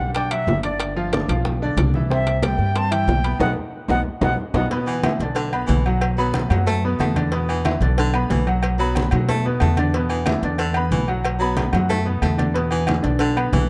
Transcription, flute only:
Already playing: F#5
0.15 G5
0.31 E5
0.64 D5
2.12 E5
2.45 G5
2.77 A5
2.92 G5
3.41 F#5
3.90 F#5
4.23 F#5
4.55 F#5

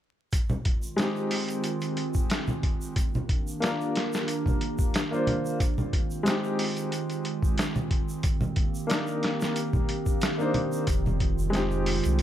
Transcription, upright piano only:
0.96 G#3 C4
1.00 D#4 G4
3.60 A#3 D4
3.65 F4 A#4
5.11 A#3 D4 F4 C5
6.23 G#3 C4
6.28 D#4 G4
8.87 A#3 D4
8.91 D#4 A#4
10.38 A#3 D4 D#4 C5
11.50 G#3 C4
11.54 D#4 G4

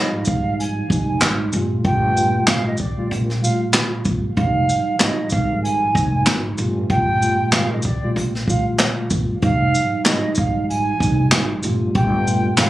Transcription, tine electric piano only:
Already playing: G#2 F3 G3 D#4
0.88 G#2 F3 G3 D#4
1.52 A#2 G3 A3 F4
1.84 A#2 G3 A3 F4
2.15 A#2 G3 A3 F4
2.96 A#2 G3 A3 F4
3.41 A#2 G3 A3 F4
4.35 G#2 F3 G3 D#4
4.97 G#2 F3 G3 D#4
5.93 G#2 F3 G3 D#4
6.57 A#2 G3 A3 F4
6.89 A#2 G3 A3 F4
7.20 A#2 G3 A3 F4
8.01 A#2 G3 A3 F4
8.46 A#2 G3 A3 F4
9.41 G#2 F3 G3 D#4
10.02 G#2 F3 G3 D#4
10.98 G#2 F3 G3 D#4
11.62 A#2 G3 A3 F4
11.94 A#2 G3 A3 F4
12.26 A#2 G3 A3 F4

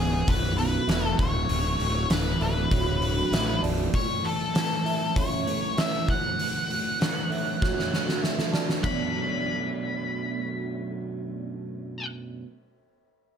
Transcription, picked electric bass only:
Already playing: C#1
0.28 B0
0.88 E1
1.19 D1
1.50 D1
1.80 D1
2.10 D1
2.40 D1
2.72 D1
3.32 A1
3.62 B0

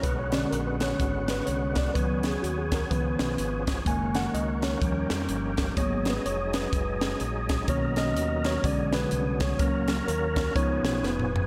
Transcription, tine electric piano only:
0.03 B4
0.19 C#5
0.32 D3 G#3 C#4 D5
0.50 A#4
0.67 B4
0.83 C#5
1.30 B4
1.46 D3 G#3 C#4 C#5
1.78 D5
1.94 D#3 F#3 B3 B4
2.26 G#4
2.42 F#4
2.58 G#4
2.74 A#4
2.91 D#3 F3 B3 B4
3.85 D#3 G#3 A#3 G#5
4.16 F#5
4.34 D#5
4.63 C#5
4.82 F3 G3 C#4
5.77 F#3 A#3 B3 C#5
6.10 B4
6.26 C#5
6.55 B4
7.69 D#3 A#3 C#4 C#5
7.98 D#5
8.46 C#5
8.64 D3 G#3 C#4 D5
8.94 B4
9.42 C#5
9.59 F#3 A#3 C#4
10.08 A#4
10.55 F3 B3 D#4 C#5
11.04 B4

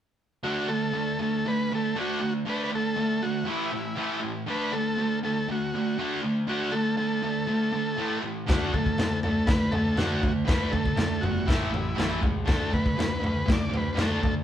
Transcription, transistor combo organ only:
0.44 F#4
0.68 A4
1.22 A4
1.48 B4
1.75 A4
2.01 F#4
2.49 B4
2.64 B4
2.75 A4
3.23 F#4
3.50 E4
4.50 B4
4.73 A4
5.25 A4
5.52 F#4
6.49 F#4
6.72 A4
6.97 A4
8.49 F#4
8.74 A4
9.23 A4
9.47 B4
9.72 A4
9.98 F#4
10.47 B4
10.71 A4
11.21 F#4
11.48 E4
12.47 A4
12.74 B4
13.26 B4
13.53 D5
13.77 B4
13.93 B4
14.02 A4

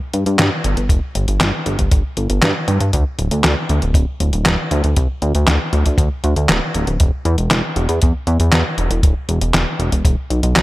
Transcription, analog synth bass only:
0.14 G2
0.26 G2
0.39 G2
0.65 G1
0.77 G1
0.89 F1
1.15 G1
1.28 G1
1.41 G1
1.66 G1
1.79 G1
1.91 G1
2.17 G1
2.30 G1
2.42 G2
2.68 G2
2.81 G2
2.93 D2
3.19 D1
3.31 D2
3.44 D2
3.70 D2
3.82 D1
3.94 D1
4.20 D1
4.33 D1
4.46 D1
4.71 D2
4.84 D2
4.97 C2
5.22 D2
5.35 D2
5.47 D2
5.73 D2
5.86 D2
5.98 D2
6.24 D2
6.36 D2
6.49 D1
6.75 D1
6.87 D1
7.00 E1
7.25 E2
7.38 E1
7.51 E1
7.76 E1
7.89 E2
8.03 E2
8.27 E2
8.40 E2
8.52 E2
8.78 E1
8.91 E1
9.03 D1
9.29 E1
9.41 E1
9.54 E1
9.79 E1
9.92 E1
10.05 E1
10.30 B1
10.43 B1
10.56 B1

